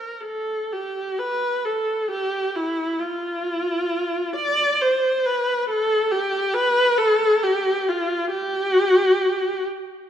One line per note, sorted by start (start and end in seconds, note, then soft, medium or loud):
0.00 0.24 A#4 soft
0.24 0.70 A4 medium
0.72 1.19 G4 medium
1.19 1.65 B4 medium
1.66 2.11 A4 medium
2.11 2.55 G4 medium
2.56 3.00 E4 medium
2.99 4.35 F4 medium
4.36 4.80 D5 medium
4.81 5.25 C5 medium
5.26 5.68 B4 medium
5.69 6.11 A4 medium
6.11 6.55 G4 medium
6.54 6.99 B4 loud
6.98 7.43 A4 loud
7.43 7.87 G4 medium
7.88 8.32 F4 medium
8.31 9.63 G4 medium